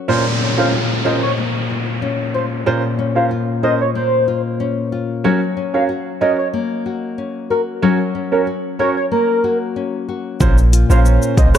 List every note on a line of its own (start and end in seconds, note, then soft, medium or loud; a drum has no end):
0.00 0.40 C#4 medium
0.00 0.15 F#4 medium
0.08 2.65 A#2 medium
0.08 0.22 C#4 medium
0.08 0.23 F4 medium
0.08 0.23 A#4 medium
0.08 0.23 C5 medium
0.08 downlifter medium
0.41 2.02 C#4 medium
0.57 0.70 C#4 medium
0.57 0.70 F4 medium
0.57 0.70 A#4 medium
0.57 0.70 C5 medium
0.57 0.67 F5 medium
0.73 1.69 F4 medium
1.05 1.19 C#4 medium
1.05 1.19 F4 medium
1.05 1.19 A#4 medium
1.05 3.62 C5 medium
1.05 1.19 C5 medium
1.05 1.16 D#5 medium
1.22 1.32 C#5 medium
1.38 3.95 A#3 medium
1.70 2.33 F4 medium
2.02 2.98 C#4 medium
2.34 3.30 F4 medium
2.34 2.45 C5 medium
2.66 5.25 A#2 medium
2.66 2.81 C#4 medium
2.66 2.81 F4 medium
2.66 2.81 A#4 medium
2.66 2.81 C5 loud
2.99 4.60 C#4 medium
3.15 3.28 C#4 medium
3.15 3.28 F4 medium
3.15 3.28 A#4 medium
3.15 3.29 C5 medium
3.15 3.26 F5 medium
3.31 4.27 F4 medium
3.63 3.77 C#4 medium
3.63 3.77 F4 medium
3.63 3.77 A#4 medium
3.63 5.31 C5 medium
3.63 3.78 C5 medium
3.63 3.74 D#5 medium
3.81 3.90 C#5 medium
3.95 6.53 A#3 medium
3.95 4.42 C5 loud
4.28 4.91 F4 medium
4.60 5.56 C#4 medium
4.92 5.31 F4 medium
5.24 7.81 F#3 medium
5.24 5.39 C#4 medium
5.24 5.39 F#4 medium
5.24 5.39 A#4 medium
5.24 5.39 C#5 medium
5.57 7.18 C#4 medium
5.74 5.86 C#4 medium
5.74 5.86 F#4 medium
5.74 5.87 A#4 medium
5.74 5.87 C#5 medium
5.74 5.84 F5 medium
5.89 6.85 F#4 medium
6.21 6.35 C#4 medium
6.21 6.35 F#4 medium
6.21 8.79 A#4 medium
6.21 6.36 A#4 medium
6.21 6.36 C#5 medium
6.21 6.32 D#5 medium
6.38 6.48 C#5 medium
6.54 9.11 A#3 medium
6.86 7.49 F#4 medium
7.18 8.14 C#4 medium
7.50 8.46 F#4 medium
7.50 7.61 A#4 medium
7.82 10.41 F#3 medium
7.82 7.97 C#4 medium
7.82 7.97 F#4 medium
7.82 7.97 A#4 medium
7.82 7.97 C#5 loud
8.15 9.76 C#4 medium
8.32 8.44 C#4 medium
8.32 8.45 F#4 medium
8.32 8.42 A#4 medium
8.32 8.45 A#4 medium
8.32 8.45 C#5 medium
8.47 9.43 F#4 medium
8.79 8.94 C#4 medium
8.79 8.94 F#4 medium
8.79 11.58 A#4 medium
8.79 8.94 A#4 medium
8.79 8.90 C#5 medium
8.79 8.94 C#5 medium
8.96 9.06 C#5 medium
9.11 11.58 A#3 medium
9.11 9.58 A#4 loud
9.44 10.07 F#4 medium
9.76 11.05 C#4 medium
10.09 10.48 F#4 medium
10.40 10.84 A#1 loud
10.40 11.58 A#2 medium
10.40 10.55 C#4 medium
10.40 10.55 F4 medium
10.40 10.55 A#4 medium
10.40 10.55 C5 loud
10.40 kick loud
10.40 shaker medium
10.58 shaker medium
10.73 11.36 F4 medium
10.73 closed hi-hat medium
10.73 shaker medium
10.90 11.18 A#1 medium
10.90 11.34 C#4 medium
10.90 11.34 F4 medium
10.90 11.34 A#4 medium
10.90 11.34 C5 medium
10.90 11.00 F5 medium
10.90 shaker medium
11.05 11.58 C#4 medium
11.05 shaker medium
11.22 shaker medium
11.37 11.53 C2 loud
11.37 11.58 C#4 medium
11.37 11.58 F4 medium
11.37 11.58 A#4 medium
11.37 11.58 C5 medium
11.37 11.48 D#5 medium
11.37 kick loud
11.37 closed hi-hat medium
11.37 shaker medium
11.55 11.58 C#5 medium
11.55 cross-stick loud
11.55 shaker medium